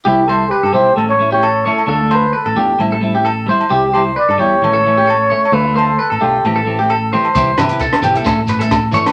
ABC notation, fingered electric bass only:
X:1
M:4/4
L:1/16
Q:"Swing 16ths" 1/4=132
K:C
V:1 name="Fingered electric bass" clef=bass
C,,4- C,, G,, B,,,2 A,,,8 | D,,4- D,, A,,, E,,2 A,,,8 | C,,4- C,, G,, E,,2 A,,,8 | D,,4- D,, A,,, B,,,2 A,,,8 |
C,,2 C,4 B,,,2 A,,,8 |]